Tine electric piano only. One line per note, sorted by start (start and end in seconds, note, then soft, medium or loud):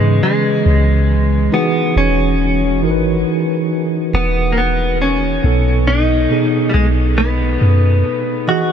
0.00 1.54 C#3 medium
0.00 1.51 E3 medium
0.00 1.53 B3 medium
0.00 1.53 C#4 medium
0.00 1.54 G#4 medium
0.00 1.54 B4 medium
1.51 2.74 E3 medium
1.51 2.74 D#4 medium
1.51 2.75 F#4 medium
1.51 2.75 G#4 medium
2.82 4.46 E3 medium
2.82 4.46 D#4 medium
2.82 4.46 F#4 medium
2.82 2.91 A#4 medium
2.91 4.50 B4 medium
5.43 6.25 B2 medium
5.43 6.25 B3 medium
5.43 6.26 D#4 medium
5.43 6.26 A4 medium
6.30 7.93 B2 medium
6.30 7.94 B3 medium
6.30 7.94 D#4 medium
6.30 7.94 G#4 medium
8.47 8.72 E3 medium
8.47 8.72 F#4 medium
8.47 8.72 G#4 medium
8.47 8.72 D#5 medium